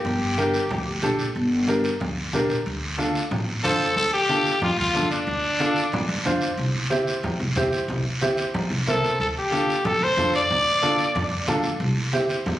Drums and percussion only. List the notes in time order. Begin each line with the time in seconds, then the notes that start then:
0.05 high conga, low conga, long guiro
0.37 high conga, short guiro
0.54 short guiro
0.69 high conga, low conga, long guiro
1.02 high conga, short guiro
1.19 short guiro
1.35 high conga, long guiro
1.68 high conga, short guiro
1.84 short guiro
2.00 high conga, low conga, long guiro
2.33 high conga, short guiro
2.50 short guiro
2.66 high conga, long guiro
2.99 high conga, short guiro
3.15 short guiro
3.31 high conga, low conga, long guiro
3.64 high conga, short guiro
3.80 short guiro
3.97 high conga, long guiro
4.29 high conga, short guiro
4.46 short guiro
4.62 high conga, low conga, long guiro
4.95 high conga, short guiro
5.11 short guiro
5.27 high conga, long guiro
5.59 high conga, short guiro
5.76 short guiro
5.92 high conga, low conga, long guiro
6.25 high conga, short guiro
6.41 short guiro
6.58 high conga, long guiro
6.90 high conga, short guiro
7.07 short guiro
7.23 high conga, low conga, long guiro
7.56 high conga, short guiro
7.72 short guiro
7.89 high conga, low conga, long guiro
8.21 high conga, short guiro
8.37 short guiro
8.54 high conga, low conga, long guiro
8.87 high conga, short guiro
9.04 short guiro
9.20 high conga, long guiro
9.52 high conga, short guiro
9.70 short guiro
9.85 high conga, low conga, long guiro
10.17 high conga, short guiro
10.33 short guiro
10.50 high conga, low conga, long guiro
10.83 high conga, short guiro
10.98 short guiro
11.15 high conga, low conga, long guiro
11.47 high conga, low conga, short guiro
11.63 short guiro
11.80 high conga, long guiro
12.13 high conga, short guiro
12.29 short guiro
12.46 high conga, low conga, long guiro